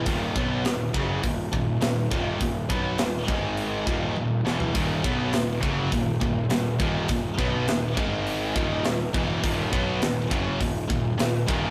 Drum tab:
HH |o---o---o---o---|o---o---o-------|o---o---o---o---|o---o---o---o---|
SD |----o-------o---|----o---------o-|----o-------o---|----o-------o---|
T1 |----------------|------------o---|----------------|----------------|
FT |----------------|---------------o|----------------|----------------|
BD |o-o---o-o-o---o-|o-o---o---o-----|o-o---o-o-o---o-|o-o---o---o---o-|

HH |o---o---o---o---|
SD |----o-------o---|
T1 |----------------|
FT |----------------|
BD |o-o---o-o-o---o-|